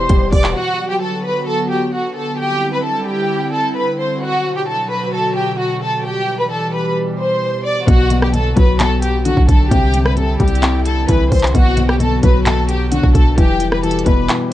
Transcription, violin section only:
Already playing: C5 C6
0.32 D5 D6
0.55 F#4 F#5
0.90 G4 G5
1.01 A4 A5
1.24 B4 B5
1.47 A4 A5
1.70 G4 G5
1.93 F#4 F#5
2.16 A4 A5
2.38 G4 G5
2.73 B4 B5
2.84 A4 A5
3.07 G4 G5
3.53 A4 A5
3.76 B4 B5
3.99 C5 C6
4.22 F#4 F#5
4.56 G4 G5
4.68 A4 A5
4.90 B4 B5
5.13 A4 A5
5.36 G4 G5
5.59 F#4 F#5
5.82 A4 A5
6.05 G4 G5
6.39 B4 B5
6.51 A4 A5
6.74 B4 B5
7.19 C5 C6
7.65 D5 D6
7.88 F#4 F#5
8.22 G4 G5
8.34 A4 A5
8.57 B4 B5
8.80 A4 A5
9.03 G4 G5
9.25 F#4 F#5
9.48 A4 A5
9.71 G4 G5
10.06 B4 B5
10.17 A4 A5
10.40 G4 G5
10.86 A4 A5
11.09 B4 B5
11.31 C5 C6
11.54 F#4 F#5
11.89 G4 G5
12.00 A4 A5
12.23 B4 B5
12.46 A4 A5
12.69 G4 G5
12.92 F#4 F#5
13.15 A4 A5
13.38 G4 G5
13.72 B4 B5
13.84 A4 A5
14.06 B4 B5

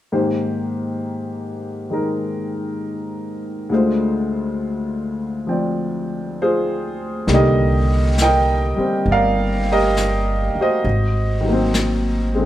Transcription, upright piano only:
0.12 G#2 D#3 A#3 G4 C5
1.90 D#3 G#3 D#4 A#4
3.69 D2 D3 G#3 F4
3.74 C5
5.47 F3 C4 D5 G5
6.42 F4 G#4 C5
7.27 D3 D#3 G3 A#3
7.34 G4 A#4 D#5
8.22 A#4 D#5 G5
8.76 G3 C4
9.11 A#4 D5 F5
9.72 G4 A#4 D#5
10.61 F#4 C5 D#5
11.41 D#3 F#3
11.48 A#3 C4
12.35 D3 G#3 C4

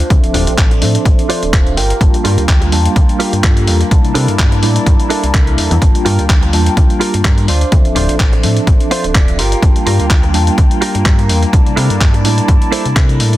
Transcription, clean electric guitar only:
Already playing: D4 F4 C5
0.34 D4 F4 G4
0.71 muted clean electric guitar stroke
0.81 muted clean electric guitar stroke
1.29 D4 F4 C5 D5
1.53 D4 F4 C5 F5
1.76 F4 G4 A#4 G5
2.24 F4 G4 A#4
2.61 muted clean electric guitar stroke
2.72 muted clean electric guitar stroke
3.19 F4 G4 A#4
3.43 F4 G4 A4
4.14 D4 E4 A4 A#4
4.51 muted clean electric guitar stroke
4.62 muted clean electric guitar stroke
5.10 D4 E4 A4 A#4
5.34 D4 E4 A4 A#4
6.05 F4 G4 A#4
6.42 muted clean electric guitar stroke
6.53 muted clean electric guitar stroke
7.00 F4 G4 A#4
7.24 F4 G4 A#4
7.48 D4 F4 C5
7.95 D4 F4 C5
8.32 muted clean electric guitar stroke
8.43 muted clean electric guitar stroke
8.91 D4 F4 C5
9.15 D4 F4 D5
9.38 F4 G4 A#4
9.86 F4 G4 A#4
10.23 muted clean electric guitar stroke
10.34 muted clean electric guitar stroke
10.81 F4 G4 A#4
11.05 F4 G4 A#4
11.76 D4 E4 A4 A#4
12.13 muted clean electric guitar stroke
12.24 muted clean electric guitar stroke
12.72 D4 E4 A4 C5
12.96 D4 E4 A4 A#4

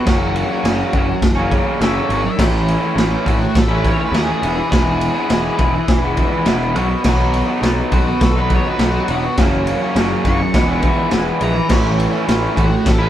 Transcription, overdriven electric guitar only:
0.06 F#2 C#3 F#3 A#3 C#4
0.49 F#3 A#3 C#4
0.65 F#2 C#3 F#3 A#3 C#4
0.94 C#3 F#3 A#3 C#4
1.08 muted overdriven electric guitar stroke
1.36 A#3 C#4
1.40 F#3
1.51 C#3 F#3 A#3 C#4
1.64 F#3 A#3 C#4
1.80 F#2 C#3 F#3 A#3 C#4
2.08 C#3 F#3 A#3 C#4
2.24 muted overdriven electric guitar stroke
2.37 A2 E3 A3 C#4 E4
2.80 A3 C#4 E4
2.96 A2 E3 A3 C#4 E4
3.25 E3 A3 C#4 E4
3.39 muted overdriven electric guitar stroke
3.68 A3 C#4 E4
3.83 E3 A3 C#4 E4
3.98 A3 C#4 E4
4.12 A2 E3 A3 C#4 E4
4.42 E3 G#3 B3 E4
4.57 muted overdriven electric guitar stroke
4.70 E3 G#3 B3 E4
5.14 G#3 B3 E4
5.28 E3 G#3 B3
5.33 E4
5.59 E3 G#3 B3 E4
5.74 muted overdriven electric guitar stroke
6.01 G#3 B3 E4
6.16 E3 G#3 B3 E4
6.30 G#3 B3 E4
6.44 E3 G#3 B3 E4
6.75 B2 F#3 B3 D#4
6.89 muted overdriven electric guitar stroke
7.04 B2 F#3 B3 D#4
7.47 B3 D#4
7.51 F#3
7.60 B2 F#3 B3 D#4
7.91 B2 F#3 B3 D#4
8.07 muted overdriven electric guitar stroke
8.36 F#3 B3 D#4
8.52 B2 F#3 B3 D#4
8.65 F#3 B3 D#4
8.79 B2 F#3 B3 D#4
9.08 B2 F#3 B3 D#4
9.24 muted overdriven electric guitar stroke
9.37 F#2 C#3 F#3 A#3
9.41 C#4
9.82 F#3 A#3 C#4
9.95 F#2 C#3 F#3 A#3
10.00 C#4
10.25 C#3 F#3 A#3 C#4
10.41 muted overdriven electric guitar stroke
10.54 E3 G#3 B3
10.58 E4
10.67 G#3 B3 E4
10.81 E3 G#3 B3 E4
10.96 G#3 B3 E4
11.10 E3 G#3 B3
11.14 E4
11.39 E3 G#3 B3
11.44 E4
11.56 muted overdriven electric guitar stroke
11.68 A2 E3 A3 C#4 E4
12.11 A3 C#4 E4
12.26 A2 E3 A3 C#4 E4
12.55 E3 A3 C#4 E4
12.70 muted overdriven electric guitar stroke
12.99 C#4 E4
13.03 A3

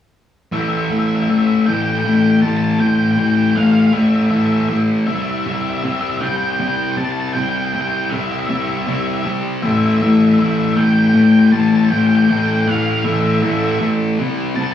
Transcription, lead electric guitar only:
0.53 E5
0.61 E5
0.69 E5
0.77 E5
0.85 E5
0.92 E5
0.99 E5
1.08 E5
1.16 E5
1.23 E5
1.30 E5
1.39 E5
1.47 E5
1.55 E5
1.62 E5
1.66 G5
1.73 G5
1.82 G5
1.89 G5
1.99 G5
2.06 G5
2.14 G5
2.23 G5
2.31 G5
2.42 A5
2.49 A5
2.57 A5
2.64 A5
2.71 A5
2.80 G5
2.87 G5
2.96 G5
3.03 G5
3.11 G5
3.19 G5
3.28 G5
3.35 G5
3.42 G5
3.50 G5
3.56 F5
3.63 F5
3.72 F5
3.80 F5
3.87 F5
3.94 E5
4.02 E5
4.08 E5
4.16 E5
4.23 E5
4.30 E5
4.37 E5
4.46 E5
4.53 E5
4.61 E5
4.69 E5
5.07 E5
5.16 E5
5.22 E5
5.31 E5
5.38 E5
5.47 E5
5.54 E5
5.62 E5
5.70 E5
5.78 E5
5.85 E5
5.92 E5
6.01 E5
6.09 E5
6.18 E5 G5
6.29 G5
6.37 G5
6.43 G5
6.52 G5
6.60 G5
6.68 G5
6.76 G5
6.84 G5
6.92 G5
6.97 A5
7.05 A5
7.12 A5
7.20 A5
7.29 A5
7.33 G5
7.41 G5
7.49 G5
7.57 G5
7.65 G5
7.73 G5
7.81 G5
7.88 G5
7.97 G5
8.05 G5
8.10 E5
8.16 E5
8.24 E5
8.32 E5
8.40 E5
8.47 E5
8.55 E5
8.62 E5
8.69 E5
8.77 E5
8.85 E5
8.92 E5
9.00 E5
9.07 E5
9.14 E5
9.22 E5
9.63 E5
9.71 E5
9.77 E5
9.86 E5
9.94 E5
10.02 E5
10.09 E5
10.17 E5
10.25 E5
10.34 E5
10.42 E5
10.48 E5
10.57 E5
10.65 E5
10.73 E5 G5
10.84 G5
10.93 G5
10.99 G5
11.07 G5
11.16 G5
11.23 G5
11.32 G5
11.39 G5
11.48 G5
11.52 A5
11.61 A5
11.68 A5
11.76 A5
11.84 A5
11.91 G5
11.99 G5
12.07 G5
12.16 G5
12.23 G5
12.30 G5
12.38 G5
12.46 G5
12.53 G5
12.62 G5
12.67 F5
12.75 F5
12.82 F5
12.91 F5
12.99 F5
13.05 E5
13.12 E5
13.21 E5
13.27 E5
13.34 E5
13.42 E5
13.50 E5
13.57 E5
13.64 E5
13.71 E5
13.79 E5
14.56 A5
14.64 A5

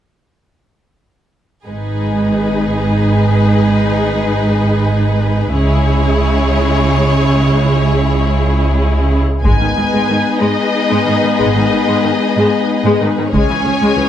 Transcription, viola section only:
1.67 G#3 D#4
5.55 G#3 E4
9.44 G#3 D#4
9.60 D#3
9.77 D#3
9.93 G#3
10.09 D#3
10.40 G#3
10.90 G#3
11.05 D#3
11.22 D#3
11.38 G#3
11.56 D#3
11.71 D#3
11.87 G#3
12.03 D#3
12.37 G#3
12.85 G#3
13.01 D#3
13.17 D#3
13.33 G#3 C#4
13.50 E3
13.64 C#3
13.81 G#3
13.96 E3

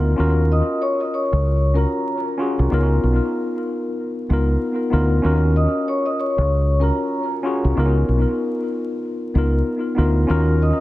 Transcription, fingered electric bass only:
Already playing: D2
0.19 D#2
1.33 C#2
2.59 C2
2.72 C#2
3.03 B1
4.30 C#2
4.93 D2
5.24 D#2
6.38 C#2
7.64 C2
7.77 C#2
8.09 B1
9.35 C#2
9.98 D2
10.30 D#2

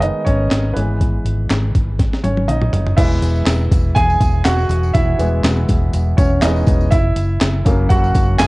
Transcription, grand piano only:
Already playing: D#3 G#3 B3 B4
0.00 D#4 D#5
0.25 C#4 C#5
0.73 E3 G#3 B3 B4
2.23 C#4 C#5
2.48 D#4 D#5
2.97 E3 G#3 B3 E4 E5
3.95 G#4 G#5
4.45 F#4 F#5
4.94 E4 E5
5.19 E3 G#3 B3
6.17 C#4 C#5
6.42 E3 G#3 B3 D#4 D#5
6.91 E4 E5
7.65 C#3 F#3 A#3
7.89 F#4 F#5
8.39 G#4 G#5

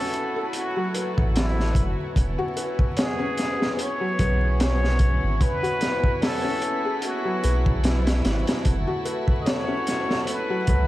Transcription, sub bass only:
1.18 A1
1.75 F#1
2.16 E1
4.20 B1
5.23 G#1
7.44 B1
8.25 G#1
8.66 F#1
10.68 C#2

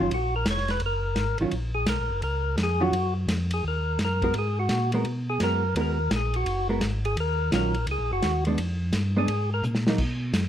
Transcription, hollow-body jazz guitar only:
0.00 D#3 F#3 C#4 F4
1.41 D#3 F#3 C#4 F4
2.80 D#3 F#3 C#4 F4
4.24 G#3 B3 F#4 A#4
4.94 G#3 B3 F#4 A#4
5.42 G#3 B3 F#4 A#4
5.77 G#3 B3 F#4 A#4
6.69 G#3 B3 F#4 A#4
7.52 D#3 F#3 C#4 F4
8.47 G#3 B3 D4
9.16 G#3 B3 D4
9.88 F#3 A#3 D#4

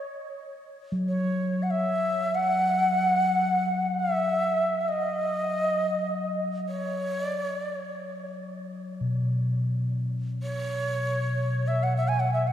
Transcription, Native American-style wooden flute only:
1.08 C#5
1.63 F#5
1.71 E5
2.35 F#5
3.99 E5
4.81 E5
4.88 D#5
6.69 C#5
7.27 D5
7.42 C#5
7.59 D5
7.75 C#5
10.43 C#5
11.67 E5
11.83 F#5
11.97 E5
12.08 G#5
12.20 F#5
12.33 E5
12.47 F#5

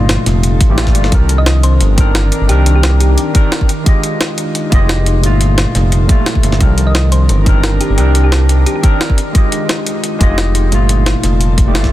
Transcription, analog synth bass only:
Already playing: G1
0.26 F1
0.70 A1
0.95 G1
1.12 C2
1.81 G1
2.41 G1
2.49 C2
4.72 F1
5.23 G1
5.75 F1
6.43 G1
6.61 C2
7.29 G1
7.90 G1
7.98 C2
10.21 F1
10.72 G1
11.23 F1
11.75 G1

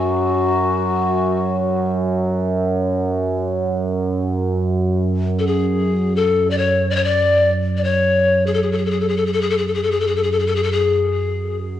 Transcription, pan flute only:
Already playing: F#4
5.39 A4
5.47 G#4
6.16 A4
6.50 D5
6.58 C#5
6.90 D5
6.96 C#5
7.04 D5
7.77 D5
7.84 C#5
8.47 G#4
8.54 A4
8.63 G#4
8.72 A4
8.78 G#4
8.86 A4
8.91 G#4
9.01 A4
9.09 G#4
9.17 A4
9.26 G#4
9.33 A4
9.41 G#4
9.50 A4
9.58 G#4
9.68 A4
9.74 G#4
9.83 A4
9.91 G#4
10.00 A4
10.07 G#4
10.16 A4
10.23 G#4
10.32 A4
10.39 G#4
10.47 A4
10.56 G#4
10.63 A4
10.72 G#4

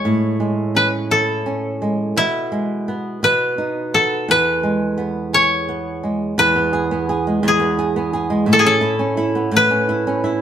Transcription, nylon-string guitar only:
Already playing: G#3 B3 G#4
0.05 A2
0.40 G#3
0.75 C#4
1.11 E4
1.46 C#4
1.82 G#3
2.16 B2
2.52 G#3
2.88 B3
3.23 B2
3.58 D#4
3.94 B3
4.28 E2
4.63 G#3
4.98 B3
5.33 G#4
5.69 B3
6.03 G#3
6.38 E2
6.56 B3
6.73 G#4
6.91 B3
7.09 G#4
7.27 G#3
7.43 E2
7.60 B3
7.79 G#4
7.96 B3
8.13 G#4
8.30 G#3
8.46 A2
8.65 C#4
8.81 E4
8.99 C#4
9.17 E4
9.35 B3
9.51 A2
9.70 C#4
9.89 E4
10.07 C#4
10.24 E4

